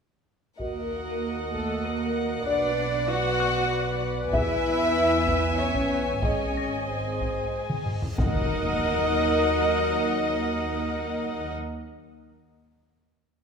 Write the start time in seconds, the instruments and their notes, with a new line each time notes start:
0.58 double bass section D#2, cello section A#3, french horn section F#4 D#5, viola section F#4 D#5, violin section A#4 F#5, clarinet A#4, taiko
1.54 cello section A3, clarinet A4, violin section A4, taiko
1.85 cello section A#3, clarinet A#4, violin section A#4, celesta D#7
2.47 double bass section B1, cello section D4, french horn section F#4 D5, viola section B4 D5, clarinet D5, violin section D5
3.09 cello section F#4, clarinet F#5, violin section F#5
3.40 celesta F#6
4.32 double bass section E2, cello section E4, french horn section G#4 E5, clarinet E5, violin section E5 G#5, viola section E5, taiko
5.27 taiko
5.57 cello section C#4, violin section C#5, clarinet C#5
5.75 taiko
6.22 double bass section G#1, cello section C#4, french horn section G#4 D#5, viola section G#4 D#5, violin section C#5, clarinet C#5, taiko, reverse cymbal
6.57 celesta A#6
6.87 cello section C4, violin section C5, clarinet C5
7.21 taiko
7.70 taiko mid
7.86 taiko low-mid
8.02 taiko low
8.17 double bass section D#2, french horn section F#3 A#4, cello section D#4, viola section A#4 D#5, clarinet D#5, violin section D#5 F#5, taiko, impact